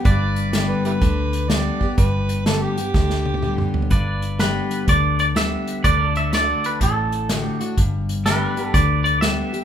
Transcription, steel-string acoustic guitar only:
0.05 G2
0.53 D3 G3 B3 G4
1.01 D3
1.49 D3 G3 B3 G4
1.80 B3 G4
1.98 G2
2.46 D3 G3 B3 G4
2.77 B3 G4
2.94 D3
3.42 D3 G3 B3 G4
3.91 G2
4.39 D3 G3 B3 G4
4.88 D3
5.35 D3 G3 B3 G4
5.84 D3
6.32 D3 A3 D4 F#4
6.81 A2
7.29 D3 A3 D4 F#4
7.60 D4 F#4
7.78 G2
8.25 D3 G3 B3 G4
8.56 B3 G4
8.74 D3
9.22 D3 G3 B3 G4
9.53 B3 G4

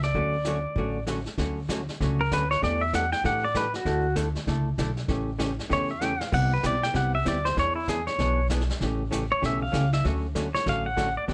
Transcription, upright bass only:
0.15 D2
0.76 A1
1.38 D2
2.00 C#2
2.31 D2
2.62 E2
3.24 A2
3.85 D2
4.47 C#2
4.78 B1
5.08 A1
5.71 E2
6.33 C2
6.64 B1
6.94 C2
7.26 D2
7.57 E2
8.19 B1
8.81 A1
9.43 B1
9.73 C#2
10.04 D2
10.66 A1
11.28 G1

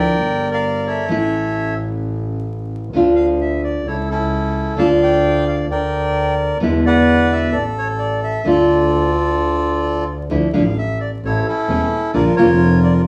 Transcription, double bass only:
Already playing: D2
0.16 G1
1.08 A1
2.93 D2
3.85 C#2
4.78 D2
5.69 D2
6.61 E2
7.53 A1
8.45 D2
10.30 D2
10.54 A1
11.24 A1
11.69 E1
12.15 A#1
12.38 F1

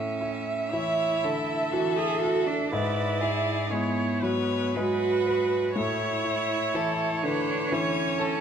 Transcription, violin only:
0.72 C#5
1.24 A4
2.72 B4
3.21 G#4
3.72 E4
4.24 C#5
4.76 B4
5.77 C#5
6.75 A4
7.25 B4
7.74 C#5
8.21 A4

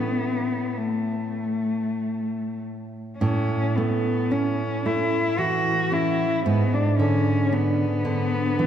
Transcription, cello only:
Already playing: B3
0.77 A3
3.18 C#4
3.76 B3
4.32 C#4
4.86 E4
5.39 F#4
5.93 E4
6.46 B3
6.73 D4
6.99 C#4
7.53 B3

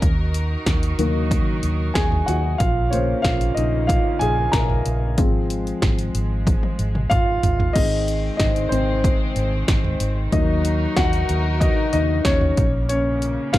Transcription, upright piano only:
0.98 D#3 F#3 A#3
1.94 G#4 G#5
2.26 F#4 F#5
2.58 F4 F5
2.90 C#3 A#3 C#4 C5 C#5
3.22 F4 F5
3.54 D#4 D#5
3.87 F4 F5
4.19 G#4 G#5
4.52 A#4 A#5
5.17 F3 G#3 C4
7.10 F4 F5
7.73 G#3 C4 D#4 D#5
8.37 D#4 D#5
8.69 C4 C5
10.32 F#3 A#3 D#4 D#5
10.96 F#4 F#5
11.60 D#4 D#5
11.93 D#4 D#5
12.25 C#4 C#5
12.89 C#4 C#5
13.53 C#3 A#3 C4 F4 F5

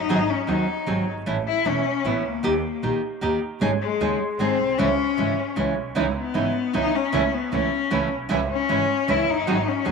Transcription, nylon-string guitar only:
0.09 D#3 F#3 C4 D#4 G#4
0.47 D#3 F#3 C4 D#4 G#4
0.86 D#3 F#3 C4 D#4 G#4
1.26 E3 A3 C#4 E4
1.65 E3 A3 C#4 E4
2.04 E3 A3 C#4 E4
2.43 D#3 A#3 D#4 G4
2.83 D#3 A#3 D#4 G4
3.21 D#3 A#3 D#4 G4
3.61 C#3 G#3 C#4 D#4 G#4
4.01 C#3 G#3 C#4 D#4 G#4
4.39 D#3 G#3 C4 D#4 G#4
4.78 C#3 E3 G#3 C#4 E4
5.17 C#3 E3 G#3 C#4 E4
5.56 C#3 E3 G#3 C#4 E4
5.95 C#3 E3 G#3 D#4 E4
6.34 C#3 E3 G#3 D#4 E4
6.73 C#3 E3 G#3 D#4 E4
7.12 C#3 E3 A3 C#4 E4
7.52 C#3 E3 A3 C#4 E4
7.90 C#3 E3 A3 C#4 E4
8.29 C#3 E3 G#3 C#4 E4
8.69 C#3 E3 G#3 C#4 E4
9.08 C#3 E3 G#3 C#4 E4
9.47 D#3 F#3 C4 D#4 G#4
9.85 D#3 F#3 C4 D#4 G#4

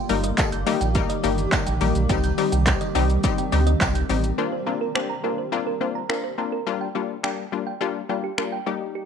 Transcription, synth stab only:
0.09 G3 A#3 D#4 A#4
0.38 G3 A#3 D#4 A4
0.66 G3 A#3 D#4 G4
0.95 G3 A#3 D#4 A#4
1.23 G3 A#3 D#4 G4
1.52 G3 A#3 D#4 G4
1.81 G3 A#3 D#4 G4
2.09 G3 C4 D#4 G4
2.38 G3 C4 D#4 G4
2.66 G3 C4 D#4 G4
2.95 G3 C4 D#4 G4
3.24 G3 C4 D#4 G4
3.52 G3 C4 D#4 G4
3.81 G3 C4 D#4 G4
4.09 G3 C4 D#4 G4
4.38 A#3 C4 D4 F4
4.66 A#3 C4 D4 F4
4.95 A#3 C4 D4 G4
5.24 A#3 C4 D4 F4
5.52 A#3 C4 D4 F4
5.81 A#3 C4 D4 F4
6.09 A#3 C4 D4 F4
6.38 A#3 C4 D4 F4
6.67 G3 A#3 D4 F4
6.95 G3 A#3 D4 F4
7.23 G3 A#3 D4 G4
7.52 G3 A#3 D4 F4
7.81 G3 A#3 D4 F4
8.09 G3 A#3 D4 F4
8.38 G3 A#3 D4 F4
8.66 G3 A#3 D#4 G4

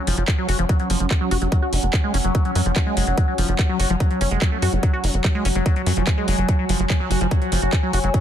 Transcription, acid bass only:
0.07 F3
0.18 F3
0.28 F3
0.38 F#3
0.49 F#4
0.59 F3
0.69 F#3
0.80 F#3
0.90 F3
1.00 F3
1.11 F3
1.21 F#3
1.31 F#4
1.42 F#3
1.52 F#3
1.62 F#4
1.73 C#4
1.83 F#3
1.93 F3
2.04 G#3
2.14 C#4
2.24 F#3
2.35 F#3
2.45 F#3
2.55 F#3
2.66 F3
2.76 F3
2.87 G#3
2.97 G#3
3.07 F#3
3.18 F#3
3.28 F#3
3.38 F3
3.49 F3
3.59 F3
3.69 F#3
3.80 F#4
3.90 F3
4.00 F#3
4.11 F#3
4.21 C#4
4.31 G#3
4.42 F#3
4.52 A3
4.62 F#4
4.73 F#3
4.83 F#3
4.93 F#4
5.04 C#4
5.14 F#3
5.24 F3
5.35 G#3
5.45 C#4
5.55 F#3
5.66 F#3
5.76 F#3
5.86 F#3
5.97 F3
6.07 F3
6.18 G#3
6.28 G#3
6.38 F#3
6.59 F#3
6.69 F3
6.80 F3
6.90 F3
7.00 F#3
7.11 F#4
7.21 F3
7.31 F#3
7.42 F#3
7.52 F3
7.62 F#4
7.73 F3
7.83 F#3
7.93 F#4
8.04 F#3
8.14 F#3

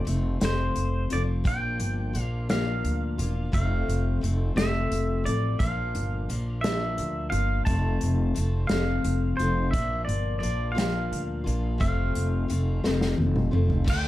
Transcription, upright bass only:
0.07 F1
0.42 F1
0.77 F1
1.12 F1
1.45 A#1
1.80 G1
2.15 A#1
2.84 D2
3.19 E1
3.54 F1
3.88 F1
4.23 F1
4.56 F1
4.91 F1
5.26 A1
5.60 A#1
5.95 G1
6.29 A#1
6.99 D2
7.32 G1
7.66 F1
8.03 F1
8.38 F1
8.71 F1
9.05 F1
9.39 F1
9.73 A#1
10.07 G1
10.42 A#1
11.12 D2
11.46 A#1
11.81 F1
12.17 F1
12.51 F1
12.85 F1
13.19 F1
13.54 F1
13.88 D2

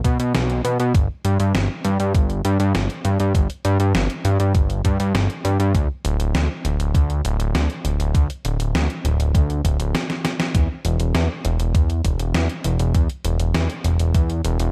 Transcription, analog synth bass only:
0.04 B2
0.20 B2
0.35 B1
0.65 B2
0.80 B2
0.94 G1
1.25 G2
1.40 G2
1.55 G1
1.85 G2
2.00 G2
2.14 G1
2.45 G2
2.60 G2
2.75 G1
3.05 G2
3.20 G2
3.35 G1
3.65 G2
3.80 G2
3.95 G1
4.25 G2
4.40 G2
4.55 G1
4.85 G2
5.00 G2
5.15 G1
5.45 G2
5.60 G2
5.75 D2
6.05 D1
6.20 D1
6.35 D2
6.65 D1
6.80 D1
6.95 D2
7.25 D1
7.40 D1
7.55 D2
7.85 D1
8.00 D1
8.15 D2
8.45 D1
8.60 D1
8.75 D2
9.05 D1
9.20 D1
9.35 D2
9.65 D1
9.80 D1
10.55 E2
10.85 E1
11.00 E1
11.15 E2
11.45 E1
11.60 E1
11.75 E2
12.05 E1
12.20 E1
12.35 E2
12.65 E1
12.80 E1
12.95 E2
13.25 E1
13.39 E1
13.54 E2
13.85 E1
14.00 E1
14.15 E2
14.45 E1
14.60 E1

